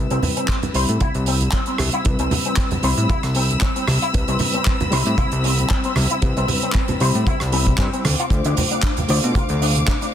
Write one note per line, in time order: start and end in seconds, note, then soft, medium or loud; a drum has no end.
0.00 0.71 G3 medium
0.00 0.72 C4 medium
0.00 10.14 C4 medium
0.00 0.72 E4 medium
0.00 0.72 B4 medium
0.00 8.01 B5 medium
0.00 8.01 E6 medium
0.10 0.20 C2 medium
0.10 0.20 C4 medium
0.10 closed hi-hat medium
0.23 open hi-hat medium
0.23 high conga medium
0.23 low conga medium
0.37 0.43 C4 medium
0.37 closed hi-hat medium
0.48 0.56 C4 medium
0.48 kick loud
0.48 clap loud
0.48 closed hi-hat loud
0.62 closed hi-hat medium
0.62 high conga medium
0.62 low conga medium
0.73 0.86 C2 medium
0.73 2.02 G3 medium
0.73 2.02 C4 medium
0.73 2.02 E4 medium
0.73 0.82 C5 medium
0.73 2.03 B5 loud
0.73 open hi-hat loud
0.89 0.98 A2 medium
0.89 closed hi-hat medium
1.00 1.08 E4 medium
1.00 kick loud
1.00 closed hi-hat medium
1.00 high conga medium
1.15 1.49 C2 loud
1.15 closed hi-hat medium
1.26 1.31 C4 medium
1.26 open hi-hat medium
1.41 closed hi-hat medium
1.41 high conga medium
1.52 1.60 C4 medium
1.52 kick loud
1.52 clap loud
1.52 closed hi-hat loud
1.66 1.73 C4 medium
1.66 closed hi-hat medium
1.78 1.90 C2 loud
1.78 cross-stick medium
1.78 open hi-hat loud
1.78 high conga medium
1.92 1.97 E4 medium
1.92 closed hi-hat soft
2.04 2.16 C2 medium
2.04 2.80 G3 medium
2.04 2.80 C4 medium
2.04 2.81 E4 medium
2.04 2.81 B4 medium
2.04 kick loud
2.04 closed hi-hat loud
2.19 2.28 C2 medium
2.19 2.28 C4 medium
2.19 closed hi-hat medium
2.31 open hi-hat loud
2.31 high conga medium
2.31 low conga medium
2.45 2.51 C4 medium
2.45 closed hi-hat medium
2.57 2.64 C4 medium
2.57 kick loud
2.57 clap loud
2.57 closed hi-hat loud
2.71 closed hi-hat medium
2.71 high conga medium
2.71 low conga medium
2.82 2.94 C2 medium
2.82 4.10 G3 medium
2.82 4.11 C4 medium
2.82 4.11 E4 medium
2.82 2.91 C5 medium
2.82 4.11 B5 loud
2.82 open hi-hat loud
2.97 3.07 A2 medium
2.97 closed hi-hat medium
3.10 3.17 E4 medium
3.10 kick loud
3.10 closed hi-hat medium
3.10 high conga medium
3.23 3.57 C2 medium
3.23 cross-stick medium
3.23 closed hi-hat soft
3.35 3.40 C4 medium
3.35 open hi-hat loud
3.50 closed hi-hat soft
3.50 high conga medium
3.61 3.69 C4 medium
3.61 kick loud
3.61 clap loud
3.61 closed hi-hat medium
3.76 3.82 C4 medium
3.76 closed hi-hat medium
3.88 3.99 C2 loud
3.88 cross-stick medium
3.88 open hi-hat loud
3.88 high conga medium
4.02 4.06 E4 medium
4.02 closed hi-hat medium
4.13 4.25 C2 medium
4.13 4.89 G3 medium
4.13 4.89 C4 medium
4.13 4.89 E4 medium
4.13 4.90 B4 medium
4.13 kick loud
4.13 closed hi-hat loud
4.28 4.37 C2 medium
4.28 4.37 C4 medium
4.28 closed hi-hat medium
4.39 open hi-hat loud
4.39 high conga medium
4.39 low conga medium
4.53 4.60 C4 medium
4.53 closed hi-hat soft
4.65 4.73 C4 medium
4.65 kick loud
4.65 clap loud
4.65 closed hi-hat loud
4.80 closed hi-hat soft
4.80 high conga medium
4.80 low conga medium
4.91 5.03 C2 medium
4.91 6.19 G3 medium
4.91 6.19 C4 medium
4.91 6.20 E4 medium
4.91 4.99 C5 medium
4.91 6.20 B5 loud
4.91 open hi-hat loud
5.05 5.16 A2 medium
5.05 closed hi-hat soft
5.18 5.25 E4 medium
5.18 kick loud
5.18 closed hi-hat medium
5.18 high conga medium
5.32 5.66 C2 loud
5.32 closed hi-hat medium
5.44 5.49 C4 medium
5.44 open hi-hat loud
5.59 closed hi-hat soft
5.59 high conga medium
5.70 5.77 C4 medium
5.70 kick loud
5.70 clap loud
5.70 closed hi-hat medium
5.84 5.91 C4 medium
5.84 closed hi-hat soft
5.96 6.07 C2 loud
5.96 cross-stick medium
5.96 open hi-hat loud
5.96 high conga medium
6.10 6.14 E4 medium
6.10 closed hi-hat soft
6.21 6.33 C2 loud
6.21 6.97 G3 medium
6.21 6.98 C4 medium
6.21 6.98 E4 medium
6.21 6.98 B4 medium
6.21 kick loud
6.21 closed hi-hat medium
6.37 6.46 C2 medium
6.37 6.46 C4 medium
6.37 closed hi-hat soft
6.48 open hi-hat loud
6.48 high conga medium
6.48 low conga medium
6.62 6.69 C4 medium
6.62 closed hi-hat medium
6.73 6.82 C4 medium
6.73 kick loud
6.73 clap loud
6.73 closed hi-hat medium
6.88 closed hi-hat soft
6.88 high conga medium
6.88 low conga medium
7.00 7.12 C2 medium
7.00 7.50 G3 medium
7.00 7.50 C4 medium
7.00 7.51 E4 medium
7.00 7.08 C5 medium
7.00 7.51 B5 loud
7.00 open hi-hat loud
7.15 7.24 A2 medium
7.15 closed hi-hat soft
7.27 7.34 E4 medium
7.27 kick loud
7.27 closed hi-hat medium
7.27 high conga medium
7.40 7.75 C2 loud
7.40 cross-stick medium
7.40 closed hi-hat medium
7.52 8.03 G3 medium
7.52 8.04 C4 medium
7.52 7.57 C4 medium
7.52 8.04 E4 medium
7.52 8.04 B5 medium
7.52 open hi-hat loud
7.67 kick medium
7.67 closed hi-hat soft
7.67 high conga medium
7.78 7.90 G2 loud
7.78 7.86 C4 medium
7.78 kick loud
7.78 clap loud
7.78 closed hi-hat medium
7.93 7.99 C4 medium
7.93 closed hi-hat soft
8.05 8.16 D2 medium
8.05 10.14 F5 medium
8.05 10.14 D6 medium
8.05 cross-stick medium
8.05 open hi-hat loud
8.05 high conga medium
8.19 8.23 F4 medium
8.19 closed hi-hat soft
8.30 8.42 D2 medium
8.30 9.06 A3 medium
8.30 9.06 D4 medium
8.30 9.07 F4 medium
8.30 9.07 C5 medium
8.30 kick loud
8.30 closed hi-hat medium
8.30 shaker medium
8.44 8.55 D2 medium
8.44 8.54 D4 medium
8.44 closed hi-hat medium
8.44 shaker soft
8.57 open hi-hat loud
8.57 high conga medium
8.57 low conga medium
8.57 shaker medium
8.71 8.77 D4 medium
8.71 closed hi-hat medium
8.71 shaker soft
8.82 8.90 D4 medium
8.82 kick loud
8.82 clap loud
8.82 closed hi-hat medium
8.82 shaker soft
8.97 closed hi-hat medium
8.97 high conga medium
8.97 low conga medium
9.08 9.20 D2 medium
9.08 10.14 A3 medium
9.08 10.14 D4 medium
9.08 10.14 F4 medium
9.08 10.14 C5 loud
9.08 9.17 D5 medium
9.08 open hi-hat loud
9.08 shaker medium
9.23 9.33 B2 medium
9.23 closed hi-hat medium
9.23 shaker soft
9.35 9.47 D2 soft
9.35 9.43 F4 medium
9.35 kick loud
9.35 closed hi-hat loud
9.35 high conga medium
9.35 shaker soft
9.49 9.83 D2 loud
9.49 closed hi-hat medium
9.49 shaker soft
9.62 9.66 D4 medium
9.62 open hi-hat loud
9.62 shaker medium
9.75 closed hi-hat medium
9.75 high conga medium
9.75 shaker soft
9.88 9.95 D4 medium
9.88 kick loud
9.88 clap loud
9.88 closed hi-hat medium
9.88 shaker soft
10.01 10.08 D4 medium
10.01 closed hi-hat medium
10.01 shaker soft